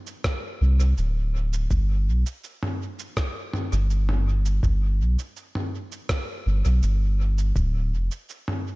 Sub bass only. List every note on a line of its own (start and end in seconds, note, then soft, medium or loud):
0.61 0.93 C2 medium
0.98 1.67 D1 loud
1.71 2.09 G1 loud
2.07 2.24 B1 medium
3.72 4.60 G1 medium
4.63 5.01 G1 loud
5.00 5.17 B1 medium
6.46 6.63 G1 medium
6.65 6.81 B1 medium
6.83 7.53 G1 medium
7.56 7.94 D1 loud
7.92 8.09 F1 medium